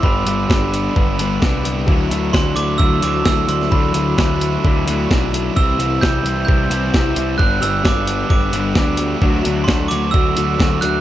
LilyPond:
<<
  \new Staff \with { instrumentName = "Glockenspiel" } { \time 4/4 \key d \mixolydian \tempo 4 = 131 b''2 r2 | r4 c'''8 d'''8 e'''8 d'''8 e'''8 c'''8 | b''2 r2 | e'''4 g'''4 g'''2 |
fis'''8 e'''8 d'''4 d'''4. r8 | r4 c'''8 d'''8 e'''4. fis'''8 | }
  \new Staff \with { instrumentName = "Clean electric guitar" } { \time 4/4 \key d \mixolydian <g, d g b d' g'>8 <g b d' g'>8 <g b d' g'>4 <g, d g b d' g'>8 <g b d' g'>8 <g b d' g'>8 <g b d' g'>8 | <d fis a d' e'>8 <a d' e'>8 <fis a d' e'>4 <d fis a d' e'>8 <a d' e'>8 <fis a d' e'>8 <a d' e'>8 | <d fis a d' e'>8 <a d' e'>8 <fis a d' e'>4 <d fis a d' e'>8 <a d' e'>8 <fis a d' e'>8 <a d' e'>8 | <c e g e' g'>8 <g e' g'>8 <e g e' g'>4 <c e g e' g'>8 <g e' g'>8 <e g e' g'>8 <g e' g'>8 |
<g, d g b d' g'>8 <g b d' g'>8 <g b d' g'>4 <g, d g b d' g'>8 <g b d' g'>8 <g b d' g'>8 <g b d' g'>8 | <d fis a d' fis'>8 <a d' fis'>8 <fis a d' fis'>4 <d fis a d' fis'>8 <a d' fis'>8 <fis a d' fis'>8 <a d' fis'>8 | }
  \new Staff \with { instrumentName = "Overdriven electric guitar" } { \time 4/4 \key d \mixolydian <g, d g b d'>8 <g b d'>8 <d g b d'>8 <g b d'>4 <g b d'>8 <g, d g b d'>4 | <d fis a d'>8 <fis a d'>8 <d fis a d'>8 <fis a d'>4 <fis a d'>8 <d fis a d'>4 | <d fis a d'>8 <fis a d'>8 <d fis a d'>8 <fis a d'>4 <fis a d'>8 <d fis a d'>4 | <c g c' e'>8 <g c' e'>8 <c g c' e'>8 <g c' e'>4 <g c' e'>8 <c g c' e'>4 |
<g, d g b d'>8 <g b d'>8 <d g b d'>8 <g b d'>4 <g b d'>8 <g, d g b d'>4 | <d fis a d'>8 <fis a d'>8 <d fis a d'>8 <fis a d'>4 <fis a d'>8 <d fis a d'>4 | }
  \new Staff \with { instrumentName = "Picked electric bass" } { \clef bass \time 4/4 \key d \mixolydian g,,8 g,,8 g,,4 g,,8 g,,8 c,4 | d,8 d,8 d,8 d,8 d,8 d,8 d,8 d,8 | d,8 d,8 d,4 d,8 d,8 b,,4 | c,8 c,8 c,8 c,8 c,8 c,8 c,8 c,8 |
g,,8 g,,8 g,,4 g,,8 g,,8 d,4 | d,8 d,8 d,8 d,8 d,8 d,8 d,8 d,8 | }
  \new DrumStaff \with { instrumentName = "Drums" } \drummode { \time 4/4 bd8 hh8 <bd sn>8 hh8 bd8 hh8 <bd sn>8 hh8 | bd8 hh8 <bd sn>8 hh8 bd8 hh8 <bd sn>8 hh16 sn16 | bd8 hh8 <bd sn>8 hh8 bd8 hh8 <bd sn>8 hh8 | bd8 hh8 <bd sn>8 hh8 bd8 hh8 <bd sn>8 hh8 |
bd8 hh8 <bd sn>8 hh8 bd8 hh8 <bd sn>8 hh8 | bd8 hh8 <bd sn>8 hh8 bd8 hh8 <bd sn>8 hh8 | }
>>